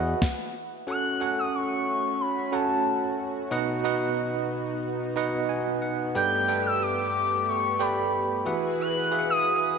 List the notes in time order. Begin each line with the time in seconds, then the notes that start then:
Already playing: E2 E3 E4 F#4 G#4 B4 D#5 E5 F#5
0.22 kick, snare
0.87 A3 C#4 F#4 A4 C#5 F#5 F#6
1.20 C#4 F#4 A4 C#5 F#5
1.39 D#6
1.55 C#6
2.21 B5
2.52 C#4 F#4 A4 C#5 F#5 A5
3.51 B2 B3 D#4 F#4 B4 D#5 F#5
3.84 D#4 F#4 B4 D#5 F#5
5.16 D#4 F#4 B4 D#5 F#5
5.49 G#5
5.82 F#5
6.15 G2 A3 G4 A4 B4 D5 G5 G6
6.48 G4 A4 B4 D5 G5
6.66 E6
6.82 D6
7.48 C#6
7.79 G4 A4 B4 D5 G5 B5
8.45 E3 E4 F#4 G#4 B4 E5 F#5
8.80 F#6
9.11 F#4 G#4 B4 E5 F5
9.19 F#5
9.30 D#6